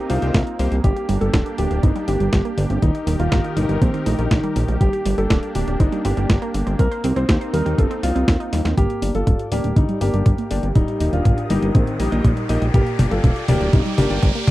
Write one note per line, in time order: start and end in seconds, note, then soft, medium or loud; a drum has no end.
0.00 2.78 A#3 medium
0.00 0.82 C4 medium
0.00 0.82 D#4 medium
0.10 0.19 C2 medium
0.10 0.20 A#3 medium
0.10 0.20 D#4 medium
0.10 0.74 F4 medium
0.10 0.20 G4 medium
0.10 0.20 C5 medium
0.10 open hi-hat medium
0.22 0.31 C2 medium
0.22 0.36 A#3 medium
0.22 0.36 D#4 medium
0.22 0.36 G4 medium
0.22 0.36 C5 loud
0.22 closed hi-hat soft
0.34 0.43 C2 loud
0.34 kick loud
0.34 snare loud
0.34 open hi-hat medium
0.47 closed hi-hat soft
0.59 0.68 C2 medium
0.59 0.73 A#3 medium
0.59 0.73 D#4 medium
0.59 0.73 G4 medium
0.59 0.73 C5 loud
0.59 open hi-hat medium
0.72 0.81 C2 medium
0.72 closed hi-hat soft
0.84 0.93 G1 loud
0.84 0.94 G3 medium
0.84 2.80 D4 medium
0.84 6.75 G4 medium
0.84 1.15 G4 medium
0.84 kick loud
0.84 closed hi-hat medium
0.96 1.08 G4 medium
0.96 closed hi-hat soft
1.09 1.18 G1 medium
1.09 1.20 G3 loud
1.09 open hi-hat medium
1.21 1.30 G1 medium
1.21 1.31 G3 loud
1.21 1.52 A4 medium
1.21 closed hi-hat soft
1.34 1.42 D1 loud
1.34 1.40 D4 loud
1.34 kick loud
1.34 snare loud
1.34 closed hi-hat medium
1.46 1.56 G4 medium
1.46 closed hi-hat soft
1.58 1.67 D1 medium
1.58 1.68 D3 medium
1.58 1.79 G4 medium
1.58 open hi-hat medium
1.71 1.80 D1 medium
1.71 1.83 D4 medium
1.71 closed hi-hat soft
1.83 1.92 G1 loud
1.83 1.93 C4 medium
1.83 2.04 D#4 medium
1.83 kick loud
1.83 closed hi-hat medium
1.96 2.05 G3 loud
1.96 closed hi-hat soft
2.08 2.17 G1 loud
2.08 2.20 C4 medium
2.08 2.72 G4 medium
2.08 open hi-hat medium
2.20 2.29 G1 medium
2.20 2.30 G3 loud
2.20 closed hi-hat soft
2.33 2.42 G1 loud
2.33 2.45 G3 medium
2.33 kick loud
2.33 snare loud
2.33 closed hi-hat medium
2.45 2.57 A#3 loud
2.45 closed hi-hat soft
2.58 2.66 G1 medium
2.58 2.67 D3 medium
2.58 open hi-hat loud
2.70 2.79 G1 medium
2.70 2.82 C4 medium
2.70 closed hi-hat soft
2.82 2.91 D#1 loud
2.82 2.92 D#3 medium
2.82 4.79 D#3 medium
2.82 3.13 D#4 medium
2.82 4.79 D#4 medium
2.82 4.79 A#4 medium
2.82 kick loud
2.82 closed hi-hat medium
2.95 3.07 D#4 medium
2.95 closed hi-hat soft
3.07 3.16 D#1 medium
3.07 3.18 D#3 loud
3.07 open hi-hat loud
3.19 3.28 D#1 medium
3.19 3.29 D#3 loud
3.19 3.50 F4 medium
3.19 closed hi-hat soft
3.32 3.41 G1 loud
3.32 3.38 A#3 loud
3.32 kick loud
3.32 snare loud
3.32 closed hi-hat medium
3.44 3.54 D#4 medium
3.44 closed hi-hat soft
3.56 3.66 G1 medium
3.56 3.67 A#2 medium
3.56 3.77 D#4 medium
3.56 open hi-hat loud
3.69 3.78 G1 medium
3.69 3.81 A#3 medium
3.69 closed hi-hat soft
3.81 3.90 A#1 loud
3.81 3.91 A3 medium
3.81 4.02 C4 medium
3.81 kick loud
3.81 closed hi-hat medium
3.94 4.04 D#3 loud
3.94 closed hi-hat soft
4.06 4.15 A#1 loud
4.06 4.18 A3 medium
4.06 4.71 D#4 medium
4.06 open hi-hat loud
4.19 4.28 A#1 medium
4.19 4.28 D#3 loud
4.19 closed hi-hat soft
4.31 4.40 A#1 loud
4.31 4.43 D#3 medium
4.31 kick loud
4.31 snare loud
4.31 open hi-hat medium
4.43 4.55 G3 loud
4.43 closed hi-hat soft
4.56 4.65 A#1 medium
4.56 4.66 A#2 medium
4.56 open hi-hat loud
4.68 4.77 A#1 medium
4.68 4.80 A3 medium
4.68 closed hi-hat soft
4.81 4.90 G1 loud
4.81 4.91 G3 medium
4.81 8.73 A#3 medium
4.81 6.77 D4 medium
4.81 5.12 G4 medium
4.81 kick loud
4.81 closed hi-hat medium
4.93 5.05 G4 medium
4.93 closed hi-hat soft
5.06 5.14 G1 loud
5.06 5.17 G3 loud
5.06 open hi-hat loud
5.18 5.27 G1 medium
5.18 5.28 G3 loud
5.18 5.49 A4 medium
5.18 closed hi-hat soft
5.30 5.39 D1 loud
5.30 5.36 D4 loud
5.30 kick loud
5.30 snare loud
5.30 closed hi-hat medium
5.43 5.52 G4 medium
5.43 closed hi-hat soft
5.55 5.64 D1 medium
5.55 5.65 D3 medium
5.55 5.76 G4 medium
5.55 open hi-hat loud
5.68 5.76 D1 medium
5.68 5.79 D4 medium
5.68 closed hi-hat soft
5.80 5.89 G1 loud
5.80 5.90 C4 medium
5.80 6.01 D#4 medium
5.80 kick loud
5.80 closed hi-hat medium
5.92 6.02 G3 loud
5.92 closed hi-hat soft
6.05 6.14 G1 medium
6.05 6.17 C4 medium
6.05 6.69 G4 medium
6.05 open hi-hat loud
6.17 6.26 G1 medium
6.17 6.27 G3 loud
6.17 closed hi-hat soft
6.30 6.38 G1 loud
6.30 6.41 G3 medium
6.30 kick loud
6.30 snare loud
6.30 closed hi-hat medium
6.42 6.54 A#3 loud
6.42 closed hi-hat soft
6.54 6.63 G1 medium
6.54 6.64 D3 medium
6.54 open hi-hat loud
6.67 6.76 G1 medium
6.67 6.78 C4 medium
6.67 closed hi-hat soft
6.79 6.88 C2 loud
6.79 6.89 C4 medium
6.79 8.75 C4 medium
6.79 8.76 D#4 medium
6.79 7.10 A#4 medium
6.79 kick loud
6.79 closed hi-hat medium
6.91 7.03 C5 medium
6.91 closed hi-hat soft
7.04 7.13 C2 medium
7.04 7.15 C4 loud
7.04 open hi-hat loud
7.16 7.25 C2 medium
7.16 7.26 C4 loud
7.16 7.47 C5 medium
7.16 closed hi-hat soft
7.29 7.38 D#2 loud
7.29 7.35 G4 loud
7.29 kick loud
7.29 snare loud
7.29 closed hi-hat medium
7.41 7.51 C5 medium
7.41 closed hi-hat soft
7.53 7.62 D#2 medium
7.53 7.63 G3 medium
7.53 7.74 A#4 medium
7.53 open hi-hat loud
7.66 7.75 D#2 medium
7.66 7.78 G4 medium
7.66 closed hi-hat soft
7.78 7.87 G1 loud
7.78 7.88 F4 medium
7.78 7.99 A4 medium
7.78 kick loud
7.78 closed hi-hat medium
7.91 8.00 C4 loud
7.91 closed hi-hat soft
8.03 8.12 C2 loud
8.03 8.15 F4 medium
8.03 8.68 F4 medium
8.03 snare soft
8.03 open hi-hat loud
8.15 8.24 C2 medium
8.15 8.25 C4 loud
8.15 closed hi-hat soft
8.28 8.37 D#2 loud
8.28 8.40 C4 medium
8.28 kick loud
8.28 snare loud
8.28 open hi-hat medium
8.40 8.52 D#4 loud
8.40 closed hi-hat soft
8.52 8.62 D#2 medium
8.52 8.62 G3 medium
8.52 snare medium
8.52 open hi-hat loud
8.65 8.74 D#2 medium
8.65 8.77 F4 medium
8.65 snare medium
8.65 closed hi-hat soft
8.77 8.86 G1 loud
8.77 8.87 G3 medium
8.77 9.08 A#3 medium
8.77 14.51 G4 medium
8.77 9.08 G4 loud
8.77 10.74 D5 medium
8.77 12.70 G5 medium
8.77 10.74 D6 medium
8.77 kick loud
8.77 closed hi-hat medium
8.77 mid tom soft
8.77 riser medium
8.89 9.01 G4 medium
8.89 closed hi-hat soft
9.02 9.11 G1 medium
9.02 9.13 G3 loud
9.02 9.25 A#3 medium
9.02 9.25 D4 medium
9.02 9.25 G4 medium
9.02 9.25 D5 medium
9.02 open hi-hat loud
9.14 9.24 G1 medium
9.14 9.24 G3 loud
9.14 9.46 F4 medium
9.14 9.46 A4 medium
9.14 closed hi-hat soft
9.27 9.36 D1 loud
9.27 9.33 D4 loud
9.27 kick loud
9.27 closed hi-hat medium
9.27 mid tom soft
9.39 9.49 G4 medium
9.39 closed hi-hat soft
9.52 9.61 D1 medium
9.52 9.61 D3 medium
9.52 9.66 A#3 medium
9.52 9.73 A#3 medium
9.52 9.66 D4 medium
9.52 9.66 G4 medium
9.52 9.73 G4 medium
9.52 9.66 D5 loud
9.52 open hi-hat loud
9.64 9.73 D1 medium
9.64 9.76 D4 medium
9.64 closed hi-hat soft
9.76 9.85 G1 loud
9.76 9.97 G3 medium
9.76 9.86 C4 medium
9.76 9.97 D#4 medium
9.76 kick loud
9.76 closed hi-hat medium
9.76 mid tom soft
9.89 9.99 G3 loud
9.89 closed hi-hat soft
10.01 10.10 G1 medium
10.01 10.66 A#3 medium
10.01 10.12 A#3 medium
10.01 10.13 C4 medium
10.01 10.12 D4 medium
10.01 10.66 G4 medium
10.01 10.12 G4 medium
10.01 10.12 D5 medium
10.01 open hi-hat loud
10.14 10.23 G1 medium
10.14 10.23 G3 loud
10.14 10.28 A#3 medium
10.14 10.28 D4 medium
10.14 10.28 G4 medium
10.14 10.28 D5 loud
10.14 closed hi-hat soft
10.26 10.35 G1 loud
10.26 10.38 G3 medium
10.26 kick loud
10.26 closed hi-hat medium
10.26 mid tom medium
10.38 10.50 A#3 loud
10.38 closed hi-hat soft
10.51 10.60 G1 medium
10.51 10.61 D3 medium
10.51 10.65 A#3 medium
10.51 10.65 D4 medium
10.51 10.65 G4 medium
10.51 10.65 D5 loud
10.51 open hi-hat loud
10.63 10.72 G1 medium
10.63 10.75 C4 medium
10.63 closed hi-hat soft
10.75 10.85 D#1 loud
10.75 10.85 D#3 medium
10.75 11.07 G3 medium
10.75 11.06 D#4 medium
10.75 12.72 A#4 medium
10.75 12.72 D#6 medium
10.75 kick loud
10.75 closed hi-hat medium
10.75 mid tom medium
10.88 11.00 D#4 medium
10.88 closed hi-hat soft
11.00 11.09 D#1 medium
11.00 11.11 D#3 loud
11.00 11.23 A#3 medium
11.00 11.23 D#4 medium
11.00 11.23 G4 medium
11.00 11.23 D#5 medium
11.00 open hi-hat loud
11.13 11.22 D#1 medium
11.13 11.23 D#3 loud
11.13 11.44 D4 medium
11.13 11.44 F4 medium
11.13 closed hi-hat soft
11.25 11.34 G1 loud
11.25 11.31 A#3 loud
11.25 kick loud
11.25 closed hi-hat medium
11.25 mid tom medium
11.38 11.47 D#4 medium
11.38 closed hi-hat soft
11.50 11.59 G1 medium
11.50 11.60 A#2 medium
11.50 11.71 G3 medium
11.50 11.64 A#3 medium
11.50 11.64 D#4 medium
11.50 11.71 D#4 medium
11.50 11.64 G4 medium
11.50 11.64 D#5 loud
11.50 open hi-hat loud
11.62 11.71 G1 medium
11.62 closed hi-hat soft
11.75 11.84 A#1 loud
11.75 11.96 D#3 medium
11.75 11.85 A3 medium
11.75 11.96 C4 medium
11.75 kick loud
11.75 closed hi-hat medium
11.75 mid tom medium
11.87 11.97 D#3 loud
11.87 closed hi-hat soft
12.00 12.09 A#1 medium
12.00 12.64 G3 medium
12.00 12.11 A3 medium
12.00 12.10 A#3 medium
12.00 12.64 D#4 medium
12.00 12.10 D#4 medium
12.00 12.10 G4 medium
12.00 12.10 D#5 medium
12.00 open hi-hat loud
12.12 12.21 A#1 medium
12.12 12.22 D#3 loud
12.12 12.26 A#3 medium
12.12 12.26 D#4 medium
12.12 12.26 G4 medium
12.12 12.26 D#5 loud
12.12 closed hi-hat soft
12.24 12.33 A#1 loud
12.24 12.36 D#3 medium
12.24 kick loud
12.24 closed hi-hat medium
12.24 mid tom medium
12.37 12.49 G3 loud
12.37 closed hi-hat soft
12.49 12.58 A#1 loud
12.49 12.59 A#2 medium
12.49 12.63 A#3 medium
12.49 12.63 D#4 medium
12.49 12.63 G4 medium
12.49 12.63 D#5 loud
12.49 open hi-hat loud
12.62 12.71 A#1 medium
12.62 12.74 A3 medium
12.62 closed hi-hat soft
12.74 12.83 G1 loud
12.74 12.84 G3 medium
12.74 13.05 A#3 medium
12.74 13.05 G4 loud
12.74 14.51 D5 medium
12.74 14.51 G5 medium
12.74 14.51 D6 medium
12.74 kick loud
12.74 closed hi-hat medium
12.74 mid tom medium
12.87 12.98 G4 medium
12.87 closed hi-hat soft
12.99 13.08 G1 medium
12.99 13.10 G3 loud
12.99 13.21 A#3 medium
12.99 13.21 D4 medium
12.99 13.21 G4 medium
12.99 13.21 D5 medium
12.99 open hi-hat loud
12.99 mid tom medium
13.11 13.20 G1 medium
13.11 13.21 G3 loud
13.11 13.42 F4 medium
13.11 13.42 A4 medium
13.11 closed hi-hat soft
13.24 13.33 D1 loud
13.24 13.30 D4 loud
13.24 kick loud
13.24 closed hi-hat medium
13.24 mid tom medium
13.36 13.46 G4 medium
13.36 closed hi-hat soft
13.48 13.57 D1 medium
13.48 13.58 D3 medium
13.48 13.62 A#3 loud
13.48 13.69 A#3 medium
13.48 13.63 D4 medium
13.48 13.63 G4 medium
13.48 13.69 G4 medium
13.48 13.62 D5 loud
13.48 open hi-hat loud
13.48 mid tom medium
13.61 13.70 D1 medium
13.61 13.73 D4 medium
13.61 closed hi-hat soft
13.73 13.82 G1 loud
13.73 13.94 G3 medium
13.73 13.83 C4 medium
13.73 13.94 D#4 medium
13.73 kick loud
13.73 closed hi-hat medium
13.73 mid tom medium
13.85 13.95 G3 loud
13.85 closed hi-hat soft
13.98 14.07 G1 loud
13.98 14.51 A#3 medium
13.98 14.09 A#3 medium
13.98 14.10 C4 medium
13.98 14.09 D4 medium
13.98 14.51 G4 medium
13.98 14.09 G4 medium
13.98 14.09 D5 medium
13.98 open hi-hat medium
13.98 mid tom medium
14.10 14.19 G1 medium
14.10 14.20 G3 loud
14.10 14.25 A#3 medium
14.10 14.25 D4 medium
14.10 14.25 G4 medium
14.10 14.25 D5 loud
14.10 closed hi-hat soft
14.23 14.32 G1 loud
14.23 14.35 G3 medium
14.23 kick loud
14.23 closed hi-hat medium
14.23 mid tom medium
14.35 14.47 A#3 loud
14.35 closed hi-hat soft
14.47 14.51 G1 medium
14.47 14.51 D3 medium
14.47 open hi-hat loud
14.47 mid tom medium